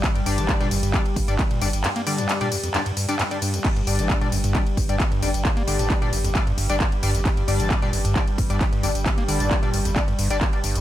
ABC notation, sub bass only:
X:1
M:4/4
L:1/16
Q:1/4=133
K:Gm
V:1 name="Sub bass" clef=bass
z2 G,,, G,,, z2 G,,, G,,, z2 G,,, G,,, z2 G,,, G,,, | z16 | z2 G,,, G,,, z2 G,,, G,,, z2 G,,, G,,, z2 G,,, G,,, | z2 G,,, G,,, z2 G,,, G,,, z2 G,,, G,,, z2 G,,, G,,, |
z2 G,,, G,,, z2 G,,, G,,, z2 G,,, G,,, z2 G,,, G,,, | z2 G,,, G,,, z2 G,,, G,,, z2 G,,, G,,, z2 G,,, G,,, |]